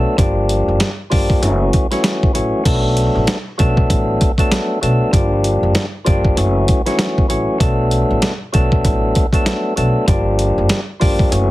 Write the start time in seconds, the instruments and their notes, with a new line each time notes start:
Already playing: tonewheel organ F#3 A3 B3 D4 A4
0.17 upright bass G1, tonewheel organ F3 G3 A#3 D4 G4, kick, closed hi-hat
0.49 closed hi-hat
0.68 upright bass F#1
0.80 snare, closed hi-hat
1.10 upright bass G1, tonewheel organ F3 G3 A#3 D4 G4, kick, open hi-hat
1.30 kick
1.41 upright bass F#1, tonewheel organ E3 F#3 A3 C#4 F#4, closed hi-hat
1.73 kick, closed hi-hat
1.91 tonewheel organ E3 F#3 A3 C#4 F#4, snare, closed hi-hat
2.04 snare, closed hi-hat
2.23 kick
2.33 upright bass A1, tonewheel organ E3 F#3 A3 C#4 F#4, closed hi-hat
2.64 upright bass B1, tonewheel organ F#3 A3 B3 D4 A4, kick, closed hi-hat, crash
2.97 closed hi-hat
3.16 upright bass A1
3.27 snare, closed hi-hat
3.58 upright bass B1, tonewheel organ F#3 A3 B3 D4 A4, kick, closed hi-hat
3.77 kick
3.90 upright bass A1, kick, closed hi-hat
4.21 kick, closed hi-hat
4.38 tonewheel organ F#3 A3 B3 D4 A4, kick, closed hi-hat
4.52 snare, closed hi-hat
4.81 upright bass B1, tonewheel organ F#3 A3 B3 D4 A4, closed hi-hat
5.12 upright bass G1, tonewheel organ F3 G3 A#3 D4 G4, kick, closed hi-hat
5.44 closed hi-hat
5.63 upright bass F#1
5.75 snare, closed hi-hat
6.05 upright bass G1, tonewheel organ F3 G3 A#3 D4 G4, kick, closed hi-hat
6.25 kick
6.36 upright bass F#1, tonewheel organ E3 F#3 A3 C#4 F#4, closed hi-hat
6.68 kick, closed hi-hat
6.86 tonewheel organ E3 F#3 A3 C#4 F#4, snare, closed hi-hat
6.99 snare, closed hi-hat
7.18 kick
7.28 upright bass A1, tonewheel organ E3 F#3 A3 C#4 F#4, closed hi-hat
7.58 upright bass B1, tonewheel organ F#3 A3 B3 D4 A4, kick, closed hi-hat
7.91 closed hi-hat
8.11 upright bass A1
8.22 snare, closed hi-hat
8.52 upright bass B1, tonewheel organ F#3 A3 B3 D4 A4, kick, closed hi-hat
8.72 kick
8.85 upright bass A1, kick, closed hi-hat
9.15 kick, closed hi-hat
9.33 tonewheel organ F#3 A3 B3 D4 A4, kick, closed hi-hat
9.46 snare, closed hi-hat
9.76 upright bass B1, tonewheel organ F#3 A3 B3 D4 A4, closed hi-hat
10.06 upright bass G1, tonewheel organ F3 G3 A#3 D4 G4, kick, closed hi-hat
10.39 closed hi-hat
10.58 upright bass F#1
10.69 snare, closed hi-hat
11.00 upright bass G1, tonewheel organ F3 G3 A#3 D4 G4, kick, open hi-hat
11.19 kick
11.30 upright bass F#1, tonewheel organ E3 F#3 A3 C#4 F#4, closed hi-hat